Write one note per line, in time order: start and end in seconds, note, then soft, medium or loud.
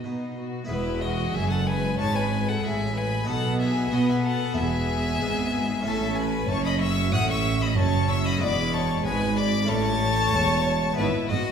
0.00 0.63 B3 soft
0.00 0.33 F#4 soft
0.00 0.64 F#4 soft
0.00 0.37 D#5 medium
0.04 0.59 B2 soft
0.04 0.62 B2 medium
0.04 0.36 B3 soft
0.04 0.37 D#4 medium
0.37 0.69 B3 soft
0.37 0.69 F#4 medium
0.65 1.30 B3 medium
0.65 3.22 E4 medium
0.65 3.23 G#4 medium
0.69 1.30 E1 medium
0.69 1.30 E2 medium
0.69 1.30 G#3 medium
0.69 0.99 E4 medium
0.69 1.03 B4 medium
0.69 1.00 E5 medium
1.01 1.34 F#4 medium
1.01 1.36 D#5 medium
1.01 1.33 F#5 loud
1.34 1.98 F#1 medium
1.34 1.97 F#2 medium
1.34 1.95 F#2 medium
1.34 2.61 G#3 medium
1.34 1.50 G#4 medium
1.34 1.49 E5 loud
1.34 1.50 G#5 loud
1.50 1.66 A4 medium
1.50 1.68 F#5 medium
1.50 1.67 A5 medium
1.66 1.98 B4 medium
1.66 1.98 G#5 medium
1.66 1.98 B5 loud
1.98 2.62 G#1 medium
1.98 2.62 G#2 medium
1.98 2.59 G#2 medium
1.98 2.14 C#5 loud
1.98 2.17 A5 loud
1.98 2.15 C#6 loud
2.15 2.47 B4 medium
2.15 2.50 G#5 medium
2.15 2.47 B5 loud
2.47 2.63 A4 medium
2.47 2.65 F#5 medium
2.47 2.63 A5 medium
2.62 3.27 A1 medium
2.62 3.26 A2 medium
2.62 3.24 A2 medium
2.62 3.26 G#3 medium
2.62 2.95 G#4 medium
2.62 2.99 E5 medium
2.62 2.95 G#5 loud
2.96 3.27 B4 medium
2.96 3.28 G#5 medium
2.96 3.27 B5 loud
3.23 3.91 B3 medium
3.23 4.51 D#4 medium
3.23 4.52 F#4 medium
3.23 3.59 A4 medium
3.27 3.91 B1 medium
3.27 3.90 B2 medium
3.27 3.88 B2 medium
3.27 3.91 B3 medium
3.27 3.60 F#5 medium
3.27 3.60 A5 loud
3.59 3.91 G#4 medium
3.59 3.95 E5 medium
3.59 3.92 G#5 loud
3.92 4.55 B2 medium
3.92 4.55 B3 medium
3.92 4.51 B3 medium
3.92 4.55 B3 medium
3.92 3.98 F#4 medium
3.92 4.11 D#5 medium
3.92 4.08 F#5 loud
4.09 4.24 G#4 medium
4.09 4.27 E5 medium
4.09 4.16 G#5 loud
4.24 4.56 A4 medium
4.24 4.56 F#5 medium
4.24 4.56 A5 loud
4.52 5.79 B3 medium
4.52 5.80 E4 medium
4.56 5.21 E1 medium
4.56 5.17 E2 medium
4.56 5.21 E2 medium
4.56 5.82 B3 medium
4.56 5.85 G#4 medium
4.56 5.82 E5 loud
4.56 5.83 G#5 loud
5.21 5.84 G#1 medium
5.21 5.81 G#2 medium
5.21 5.84 G#2 medium
5.81 8.35 A3 medium
5.81 8.36 C#4 medium
5.81 8.37 E4 medium
5.85 6.48 A1 medium
5.85 6.45 A2 medium
5.85 6.48 A2 medium
5.85 6.48 C#4 medium
5.85 6.17 A4 medium
5.85 6.17 E5 loud
5.85 6.16 A5 loud
6.16 6.49 B4 medium
6.16 6.50 G#5 medium
6.16 6.49 B5 loud
6.48 7.12 F#1 medium
6.48 7.09 F#2 medium
6.48 7.12 F#2 medium
6.48 7.75 C#4 medium
6.48 6.66 C#5 medium
6.48 6.64 A5 medium
6.48 6.65 C#6 loud
6.65 6.82 D#5 loud
6.65 6.80 B5 medium
6.65 6.71 D#6 loud
6.80 7.14 E5 loud
6.80 7.14 C#6 loud
6.80 7.12 E6 loud
7.12 7.77 A1 loud
7.12 7.74 A2 medium
7.12 7.78 A2 medium
7.12 7.30 F#5 loud
7.12 7.29 D#6 loud
7.12 7.19 F#6 loud
7.29 7.62 E5 medium
7.29 7.63 C#6 loud
7.29 7.61 E6 loud
7.62 7.78 D#5 medium
7.62 7.77 B5 medium
7.62 7.78 D#6 loud
7.77 8.41 F#1 medium
7.77 8.42 F#2 medium
7.77 8.38 F#2 medium
7.77 8.40 C#4 medium
7.77 8.10 C#5 medium
7.77 8.12 A5 loud
7.77 8.10 C#6 loud
8.10 8.25 E5 loud
8.10 8.25 C#6 loud
8.10 8.26 E6 loud
8.26 8.42 D#5 loud
8.26 8.41 B5 medium
8.26 8.42 D#6 loud
8.37 9.04 E1 medium
8.37 9.64 G#3 medium
8.37 9.05 G#3 loud
8.37 9.64 B3 medium
8.37 9.65 E4 medium
8.42 9.02 E2 medium
8.42 9.05 E2 medium
8.42 8.74 D5 loud
8.42 8.75 B5 medium
8.42 8.73 D6 loud
8.73 9.06 C#5 medium
8.73 9.04 A5 loud
8.73 9.05 C#6 loud
9.05 9.69 G#1 medium
9.05 9.66 G#2 medium
9.05 9.68 G#2 medium
9.05 9.69 G#3 medium
9.05 9.38 B4 loud
9.05 9.39 G#5 loud
9.05 9.37 B5 loud
9.37 9.69 D5 loud
9.37 9.70 B5 loud
9.37 9.69 D6 loud
9.65 10.91 A3 medium
9.65 10.92 C#4 medium
9.65 10.93 E4 medium
9.65 10.97 A5 loud
9.69 10.34 A1 medium
9.69 10.30 A2 medium
9.69 10.34 A2 medium
9.69 10.97 A3 medium
9.69 10.98 C#5 loud
9.69 10.98 C#6 loud
10.33 10.97 E1 medium
10.33 10.93 E2 medium
10.33 10.97 E2 medium
10.93 11.52 B3 medium
10.93 11.52 E4 medium
10.97 11.06 G#1 loud
10.97 11.26 G#2 medium
10.97 11.06 G#2 medium
10.97 11.06 B3 medium
10.97 11.29 E4 medium
10.97 11.28 B4 medium
10.97 11.29 E5 loud
11.28 11.37 G#1 medium
11.28 11.52 G#2 medium
11.28 11.38 G#2 loud
11.28 11.38 B3 medium
11.28 11.52 F#4 medium
11.28 11.52 D#5 medium
11.28 11.52 F#5 loud